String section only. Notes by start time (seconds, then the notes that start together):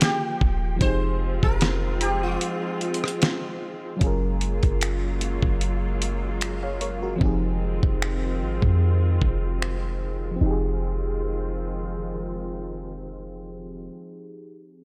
Already playing: F3 A#3 G5
0.81 G#3 C4 F4
4.01 F#3 G#3 A#3 F4
7.21 D#3 C4 F4
10.41 D#3 G#3 C4 F4